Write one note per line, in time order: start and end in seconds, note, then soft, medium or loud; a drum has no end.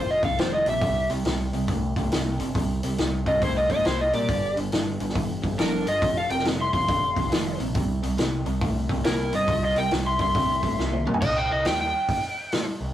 0.00 0.21 F1 medium
0.00 0.20 F2 medium
0.00 0.21 D3 loud
0.10 0.25 F4 medium
0.10 0.24 D#5 medium
0.23 0.37 C2 medium
0.23 0.37 F2 medium
0.23 0.38 D3 medium
0.23 0.39 A4 medium
0.23 0.39 F5 medium
0.23 kick medium
0.23 open hi-hat soft
0.38 0.64 F1 medium
0.38 0.64 F2 medium
0.38 0.64 D#3 medium
0.38 0.53 F4 medium
0.38 0.53 C5 medium
0.38 snare loud
0.38 open hi-hat medium
0.54 0.67 F4 medium
0.54 0.68 D#5 medium
0.66 0.82 A#1 medium
0.66 0.81 F2 medium
0.66 0.81 C3 medium
0.66 1.08 G4 medium
0.66 1.10 E5 medium
0.66 open hi-hat soft
0.81 1.07 C2 medium
0.81 1.07 C3 medium
0.81 1.08 G3 medium
0.81 kick loud
0.81 open hi-hat medium
1.10 1.24 C2 medium
1.10 1.24 C3 medium
1.10 1.24 G3 medium
1.10 open hi-hat soft
1.25 1.50 C2 medium
1.25 1.51 C3 medium
1.25 1.51 G3 medium
1.25 snare medium
1.25 open hi-hat medium
1.53 1.67 C2 medium
1.53 1.67 C3 medium
1.53 1.68 G3 medium
1.53 open hi-hat soft
1.68 1.94 C2 medium
1.68 1.94 C3 medium
1.68 1.94 A3 medium
1.68 kick medium
1.68 open hi-hat medium
1.96 2.10 C2 medium
1.96 2.11 C3 medium
1.96 2.11 A3 medium
1.96 kick medium
1.96 open hi-hat soft
2.12 2.37 C2 medium
2.12 2.37 C3 medium
2.12 2.38 A#3 medium
2.12 snare loud
2.12 open hi-hat medium
2.39 2.53 G1 medium
2.39 2.54 C3 medium
2.39 2.54 G3 medium
2.39 open hi-hat soft
2.55 2.81 C2 medium
2.55 2.80 C3 medium
2.55 2.80 G3 medium
2.55 kick medium
2.55 open hi-hat medium
2.83 2.97 C2 medium
2.83 2.97 C3 medium
2.83 2.98 G3 medium
2.83 open hi-hat medium
2.98 3.24 C2 medium
2.98 3.24 C3 medium
2.98 3.24 G3 medium
2.98 snare medium
2.98 open hi-hat medium
3.26 3.40 C2 medium
3.26 3.41 C3 medium
3.26 3.41 G3 medium
3.26 3.41 F4 medium
3.26 3.41 D#5 loud
3.26 kick medium
3.26 open hi-hat soft
3.42 3.67 C2 medium
3.42 3.67 C3 medium
3.42 3.67 A3 medium
3.42 3.56 E4 medium
3.42 3.56 C5 medium
3.42 kick loud
3.42 open hi-hat medium
3.56 3.70 F4 medium
3.56 3.71 D#5 medium
3.69 3.84 G1 medium
3.69 3.83 C3 medium
3.69 3.84 A3 medium
3.69 3.84 F4 medium
3.69 3.85 D#5 medium
3.69 kick medium
3.69 open hi-hat soft
3.85 4.11 C2 medium
3.85 4.10 C3 medium
3.85 4.10 A#3 medium
3.85 3.99 E4 medium
3.85 4.00 C5 medium
3.85 snare medium
3.85 open hi-hat medium
4.00 4.13 F4 medium
4.00 4.14 D#5 medium
4.13 4.27 A#2 medium
4.13 4.27 C3 medium
4.13 4.27 G3 medium
4.13 4.54 G4 medium
4.13 4.56 D5 medium
4.13 open hi-hat soft
4.29 4.54 G1 medium
4.29 4.54 G2 medium
4.29 4.54 D3 medium
4.29 kick loud
4.29 open hi-hat medium
4.56 4.71 G1 medium
4.56 4.70 G2 medium
4.56 4.71 D3 medium
4.56 open hi-hat soft
4.72 4.97 G1 medium
4.72 4.97 G2 medium
4.72 4.97 D3 medium
4.72 snare loud
4.72 open hi-hat medium
5.00 5.14 G1 medium
5.00 5.14 G2 medium
5.00 5.14 D3 medium
5.00 open hi-hat soft
5.09 snare soft
5.15 5.41 G1 medium
5.15 5.40 G2 medium
5.15 5.41 E3 medium
5.15 kick loud
5.15 open hi-hat medium
5.42 5.57 G1 medium
5.42 5.57 G2 medium
5.42 5.57 E3 medium
5.42 kick medium
5.42 open hi-hat soft
5.58 5.84 G1 medium
5.58 5.83 G2 medium
5.58 5.84 F3 medium
5.58 5.86 D4 medium
5.58 5.87 A#4 medium
5.58 snare medium
5.58 open hi-hat medium
5.86 6.01 G1 medium
5.86 6.00 G2 medium
5.86 6.00 D3 medium
5.86 6.15 F4 medium
5.86 6.16 D#5 medium
5.86 open hi-hat soft
6.02 6.27 F1 medium
6.02 6.27 F2 medium
6.02 6.27 C3 medium
6.02 kick loud
6.02 open hi-hat medium
6.17 6.33 A4 medium
6.17 6.31 F5 loud
6.30 6.44 F1 medium
6.30 6.43 F2 medium
6.30 6.44 C3 medium
6.30 6.46 A#4 medium
6.30 6.45 G5 medium
6.30 open hi-hat soft
6.39 snare soft
6.44 6.71 F1 medium
6.44 6.70 F2 medium
6.44 6.70 C3 medium
6.44 snare loud
6.44 open hi-hat medium
6.61 6.74 E5 medium
6.61 6.73 C6 medium
6.73 6.87 F1 medium
6.73 6.87 F2 medium
6.73 6.87 C3 medium
6.73 7.57 F5 medium
6.73 7.58 C6 loud
6.73 kick medium
6.73 open hi-hat soft
6.88 7.14 F1 medium
6.88 7.13 F2 medium
6.88 7.14 D3 medium
6.88 kick loud
6.88 open hi-hat medium
7.15 7.31 C2 medium
7.15 7.29 F2 medium
7.15 7.30 D3 medium
7.15 kick medium
7.15 open hi-hat soft
7.30 7.57 F1 medium
7.30 7.56 F2 medium
7.30 7.56 D#3 medium
7.30 snare loud
7.30 open hi-hat medium
7.59 7.74 A#1 medium
7.59 7.73 F2 medium
7.59 7.73 C3 medium
7.59 open hi-hat soft
7.75 8.00 C2 medium
7.75 8.00 C3 medium
7.75 8.00 G3 medium
7.75 kick loud
7.75 open hi-hat medium
8.03 8.17 C2 medium
8.03 8.17 C3 medium
8.03 8.17 G3 medium
8.03 open hi-hat soft
8.18 8.44 C2 medium
8.18 8.43 C3 medium
8.18 8.44 G3 medium
8.18 snare loud
8.18 open hi-hat medium
8.46 8.60 C2 medium
8.46 8.60 C3 medium
8.46 8.60 G3 medium
8.46 open hi-hat soft
8.61 8.87 C2 medium
8.61 8.87 C3 medium
8.61 8.87 A3 medium
8.61 kick loud
8.61 open hi-hat medium
8.89 9.03 C2 medium
8.89 9.04 C3 medium
8.89 9.04 A3 medium
8.89 kick medium
8.89 open hi-hat soft
9.04 9.30 C2 medium
9.04 9.30 C3 medium
9.04 9.30 A#3 medium
9.04 9.32 E4 medium
9.04 9.33 A#4 loud
9.04 snare loud
9.04 open hi-hat medium
9.32 9.47 G1 medium
9.32 9.47 C3 medium
9.32 9.47 G3 medium
9.32 9.61 F4 medium
9.32 9.63 D#5 medium
9.32 open hi-hat soft
9.48 9.74 C2 medium
9.48 9.73 C3 medium
9.48 9.73 G3 medium
9.48 kick loud
9.48 open hi-hat medium
9.63 9.77 F4 medium
9.63 9.78 D#5 medium
9.76 9.90 C2 medium
9.76 9.90 C3 medium
9.76 9.90 G3 medium
9.76 9.91 A#4 medium
9.76 9.92 G5 medium
9.76 open hi-hat soft
9.91 10.17 C2 medium
9.91 10.17 C3 medium
9.91 10.17 G3 medium
9.91 snare medium
9.91 open hi-hat medium
10.06 10.20 E5 medium
10.06 10.20 C6 medium
10.19 10.34 C2 medium
10.19 10.34 C3 medium
10.19 10.34 G3 medium
10.19 11.04 E5 medium
10.19 11.05 C6 medium
10.19 kick medium
10.19 open hi-hat medium
10.35 10.61 C2 medium
10.35 10.61 C3 medium
10.35 10.61 A3 medium
10.35 kick loud
10.35 open hi-hat medium
10.63 10.77 G1 medium
10.63 10.77 C3 medium
10.63 10.77 A3 medium
10.63 kick medium
10.63 open hi-hat soft
10.79 11.04 C2 medium
10.79 11.04 C3 medium
10.79 11.04 A#3 medium
10.79 snare medium
10.93 mid tom medium
11.06 11.21 A#2 medium
11.06 11.20 C3 medium
11.06 11.20 G3 medium
11.06 mid tom medium
11.14 floor tom medium
11.22 11.48 C2 medium
11.22 11.36 D#5 medium
11.22 kick loud
11.22 crash loud
11.37 11.51 G5 medium
11.50 11.64 C2 medium
11.50 11.66 D#5 medium
11.65 11.91 D#2 medium
11.65 11.80 G5 medium
11.65 snare loud
11.65 open hi-hat soft
11.81 12.65 G5 medium
12.09 kick medium
12.09 open hi-hat medium
12.52 snare loud
12.52 open hi-hat soft
12.81 12.94 C2 medium